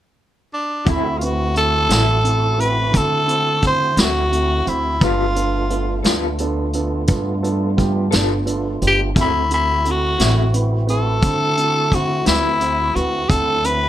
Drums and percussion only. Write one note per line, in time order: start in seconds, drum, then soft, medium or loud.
0.86 kick loud
0.86 closed hi-hat medium
1.21 closed hi-hat medium
1.56 closed hi-hat medium
1.90 snare loud
1.90 closed hi-hat medium
2.25 closed hi-hat medium
2.60 closed hi-hat medium
2.94 kick loud
2.94 closed hi-hat medium
3.28 closed hi-hat medium
3.62 kick medium
3.62 closed hi-hat medium
3.97 snare loud
3.97 closed hi-hat medium
4.32 closed hi-hat medium
4.67 closed hi-hat medium
5.01 kick loud
5.01 closed hi-hat medium
5.36 closed hi-hat medium
5.70 closed hi-hat medium
6.04 snare loud
6.04 closed hi-hat medium
6.38 closed hi-hat medium
6.73 closed hi-hat medium
7.07 kick loud
7.07 closed hi-hat medium
7.44 closed hi-hat soft
7.78 kick medium
7.78 closed hi-hat medium
8.12 snare loud
8.12 closed hi-hat medium
8.47 closed hi-hat medium
8.82 closed hi-hat medium
9.16 kick loud
9.16 closed hi-hat medium
9.50 closed hi-hat medium
9.85 closed hi-hat medium
10.19 snare loud
10.19 closed hi-hat medium
10.54 closed hi-hat medium
10.88 closed hi-hat medium
11.22 kick loud
11.22 closed hi-hat medium
11.57 closed hi-hat medium
11.92 kick medium
11.92 closed hi-hat medium
12.26 snare loud
12.26 closed hi-hat medium
12.61 closed hi-hat medium
12.96 closed hi-hat medium
13.30 kick loud
13.30 closed hi-hat medium
13.64 closed hi-hat medium